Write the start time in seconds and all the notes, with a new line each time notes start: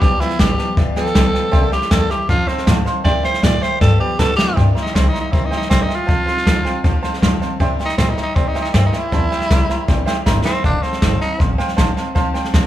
0.00 B1 G2 D3 F3 B3 F4 G4 B4 D5 G5, kick, snare
0.20 F3 B3 E4 F4 G4 B4 D5 G5, muted upright bass stroke, snare
0.30 snare
0.39 A1 F3 B3 F4 G4 B4 D5 G5, kick, snare, hi-hat pedal
0.58 F3 B3 F4 G4 B4 D5 A5, snare
0.76 G1 G2 D3 F3 B3 F4 G4 B4 D5 E5, kick, snare
0.96 F3 B3 F4 G4 A4 B4 D5 G5, muted upright bass stroke, snare
1.06 snare
1.15 B1 B3 F4 G4 B4 D5 G5, kick, snare, hi-hat pedal
1.33 F3 B3 F4 G4 B4 D5 G5, muted upright bass stroke, snare
1.52 C2 C3 G3 A#3 E4 G4 C5 E5 G5, kick, snare
1.71 A#3 E4 G4 C5 E5 G5, muted upright bass stroke, snare
1.82 snare
1.90 E2 G3 A#3 E4 G4 A4 C5 E5 G5, kick, snare, hi-hat pedal
2.09 A#3 E4 G4 C5 E5 G5, muted upright bass stroke, snare
2.28 F2 F3 C4 D#4 F4 A4 C5 F5 A5, kick, snare
2.47 C4 D#4 A4 C5 F5 C6, muted upright bass stroke, snare
2.58 snare
2.66 A2 F3 C4 D#4 A4 C5 F5 A5, kick, snare, hi-hat pedal
2.85 C4 D#4 A4 C5 F5 C6, muted upright bass stroke, snare
3.04 C3 G3 A#3 E4 G4 C5 D5 E5 G5, kick, snare
3.23 A#3 E4 G4 C5 E5 G5, muted upright bass stroke, snare
3.34 snare
3.42 A#2 G3 A#3 E4 G4 C5 D5 E5 G5, kick, snare, hi-hat pedal
3.61 A#3 E4 G4 C5 E5 G5, muted upright bass stroke, snare
3.80 G2 D3 F3 B3 F4 G4 A4 B4 D5 G5, kick, snare
3.99 F3 B3 F4 G4 B4 D5 G5, muted upright bass stroke
4.19 B2 F3 B3 F4 G4 A4 B4 D5 A5, kick, snare, hi-hat pedal
4.36 F3 B3 F4 G4 B4 D5 E5, muted upright bass stroke, snare
4.56 G2 C3 G3 A#3 E4 G4 C5 E5 G5, kick, snare
4.75 A#3 E4 G4 C5 E5 A#5, muted upright bass stroke, snare
4.82 D#4
4.86 snare
4.94 C2 G3 A#3 C4 E4 G4 C5 E5 G5, kick, snare, hi-hat pedal
5.08 D#4
5.13 A#3 E4 G4 C5 E5 A#5, snare
5.21 D#4
5.32 G1 C3 G3 A#3 C4 E4 G4 C5 E5 A#5, kick, snare
5.45 D#4
5.51 A#3 E4 G4 C5 E5 G5, muted upright bass stroke, snare
5.57 D#4
5.61 snare
5.69 A#1 G3 A#3 C4 E4 G4 C5 E5 G5, kick, snare, hi-hat pedal
5.82 D#4
5.87 A#3 E4 G4 C5 E5 G5, muted upright bass stroke, snare
5.95 F4
6.07 F2 F3 C4 D#4 A4 C5 F5 A5, kick, snare
6.26 C4 D#4 A4 C5 F5 C6, muted upright bass stroke, snare
6.37 snare
6.45 D2 F3 C4 D#4 A4 C5 F5 A5, kick, snare, hi-hat pedal
6.65 C4 D#4 A4 C5 F5 G5, muted upright bass stroke, snare
6.84 D#2 F3 C4 D#4 A4 C5 F5 A5, kick, snare
7.02 C4 D#4 A4 C5 F5 A5, snare
7.14 snare
7.22 F2 F3 C4 D#4 A4 C5 F5 C6, kick, snare, hi-hat pedal
7.40 C4 D#4 A4 C5 F5 A5, muted upright bass stroke, snare
7.60 C3 G3 A#3 E4 G4 C5 E5 G5, kick, snare
7.79 A#3 E4 G4 C5 E5 G5, muted upright bass stroke, snare
7.85 D#4, snare
7.97 A#2 G3 A#3 C4 E4 G4 C5 E5 G5, kick, snare, hi-hat pedal
8.10 D#4
8.17 A#3 E4 G4 C5 E5 A#5, muted upright bass stroke, snare
8.23 D#4
8.35 A2 C3 G3 A#3 C4 E4 G4 C5 E5 G5, kick, snare
8.47 D#4
8.54 A#3 E4 G4 C5 E5 G5, muted upright bass stroke, snare
8.62 D#4, snare
8.73 G2 G3 A#3 C4 E4 G4 C5 E5 G5, kick, snare, hi-hat pedal
8.86 D#4
8.93 A#3 E4 G4 C5 E5 G5, muted upright bass stroke, snare
8.99 E4
9.12 E2 C3 G3 A#3 E4 G4 C5 E5 A5, kick, snare
9.30 A#3 E4 G4 C5 E5 G5, snare
9.41 snare
9.50 C2 G3 A#3 E4 G4 C5 E5 A#5, kick, snare, hi-hat pedal
9.69 A#3 E4 G4 C5 E5 A#5, muted upright bass stroke, snare
9.88 A#1 C3 G3 A#3 E4 G4 C5 E5 G5, kick, snare
10.06 A#3 E4 G4 C5 E5 G5, snare
10.26 G1 G3 A#3 E4 G4 C5 E5 A#5, kick, snare, hi-hat pedal
10.45 A#3 C4 E4 G4 C5 E5 G5, snare
10.64 F1 F3 C4 D4 D#4 A4 C5 F5 A5, kick, snare
10.82 C4 D#4 A4 C5 F5 C6, muted upright bass stroke, snare
10.93 snare
11.02 G1 F3 C4 D#4 A4 C5 F5 A5, kick, snare, hi-hat pedal
11.20 C4 D#4 A4 C5 F5 A5, muted upright bass stroke, snare
11.38 A1 F3 C4 D#4 A4 C5 F5 C6, kick, snare
11.58 C4 D#4 A4 C5 F5 G5, muted upright bass stroke, snare
11.68 snare
11.77 A#1 F3 C4 D#4 A4 C5 F5 A5, kick, snare, hi-hat pedal
11.96 C4 D#4 A4 C5 F5 A5, muted upright bass stroke, snare
12.15 C2 F3 C4 D#4 A4 C5 F5 A5, kick, snare
12.34 C4 D#4 A4 C5 F5 G5, snare
12.45 snare
12.53 D2 F3 C4 D#4 A4 C5 F5 A5, kick, snare, hi-hat pedal